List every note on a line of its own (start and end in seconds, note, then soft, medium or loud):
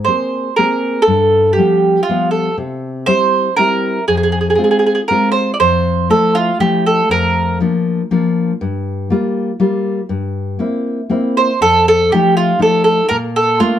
0.05 0.48 A#3 soft
0.05 0.48 C4 soft
0.05 0.48 G#4 soft
0.05 0.56 C5 medium
0.56 0.99 A#3 soft
0.56 0.99 C4 soft
0.56 0.99 G#4 soft
0.56 1.04 A#4 medium
1.02 1.52 A4 medium
1.07 1.57 G2 medium
1.53 2.02 G4 medium
1.58 1.98 F3 soft
1.58 1.98 G3 soft
1.58 1.99 B3 soft
2.03 2.29 F4 medium
2.09 2.49 F3 soft
2.09 2.49 G3 soft
2.09 2.49 B3 medium
2.31 2.55 A4 medium
2.57 3.06 C3 medium
3.06 3.48 G3 soft
3.06 3.48 C4 soft
3.06 3.48 E4 medium
3.06 3.53 C5 loud
3.56 3.98 G3 soft
3.56 3.98 C4 soft
3.56 3.99 E4 soft
3.56 4.04 A#4 medium
4.08 4.57 F2 medium
4.08 4.15 G#4 medium
4.17 4.22 G#4 soft
4.23 4.30 G#4 medium
4.32 4.38 G#4 soft
4.41 4.47 G#4 soft
4.50 4.54 G#4 soft
4.55 4.99 G#3 soft
4.55 4.99 C4 soft
4.55 4.99 F4 soft
4.55 4.62 G#4 soft
4.64 4.70 G#4 soft
4.71 4.77 G#4 medium
4.79 4.85 G#4 soft
4.86 4.92 G#4 soft
4.95 5.00 G#4 soft
5.08 5.51 G#3 soft
5.08 5.51 C4 soft
5.08 5.51 F4 soft
5.08 5.31 A#4 medium
5.32 5.50 C5 medium
5.54 5.60 D5 medium
5.60 6.09 F2 medium
5.60 6.07 C5 medium
6.10 6.50 F3 soft
6.10 6.50 A3 soft
6.10 6.51 E4 medium
6.10 6.34 A4 medium
6.35 6.59 F4 medium
6.60 7.01 F3 soft
6.60 7.00 A3 soft
6.60 7.01 E4 medium
6.60 6.84 G4 medium
6.86 7.11 A4 medium
7.09 7.59 F2 medium
7.09 7.58 A#4 medium
7.60 8.01 F3 soft
7.60 8.01 A#3 soft
7.60 8.01 D4 medium
8.11 8.51 F3 medium
8.11 8.51 A#3 medium
8.11 8.51 D4 medium
8.61 9.09 G2 medium
9.10 9.50 G3 soft
9.10 9.50 A#3 soft
9.10 9.51 F4 medium
9.60 10.00 G3 medium
9.60 10.00 A#3 soft
9.60 10.00 F4 soft
10.09 10.58 G2 medium
10.59 10.99 A#3 soft
10.59 11.00 C4 soft
10.59 11.00 E4 soft
11.10 11.50 A#3 soft
11.10 11.50 C4 soft
11.10 11.51 E4 soft
11.37 11.61 C5 medium
11.61 12.09 F2 medium
11.61 11.85 A4 loud
11.88 12.10 A4 loud
12.12 12.52 F3 soft
12.12 12.52 A3 soft
12.12 12.52 D#4 soft
12.12 12.36 G4 medium
12.37 12.59 F4 medium
12.59 13.00 F3 medium
12.59 13.00 A3 soft
12.59 13.00 D#4 medium
12.59 12.83 A4 medium
12.84 13.08 A4 medium
13.09 13.58 A#2 medium
13.09 13.16 A#4 loud
13.36 13.59 A4 medium
13.60 13.79 A3 soft
13.60 13.79 A#3 soft
13.60 13.79 D4 soft
13.60 13.79 F4 medium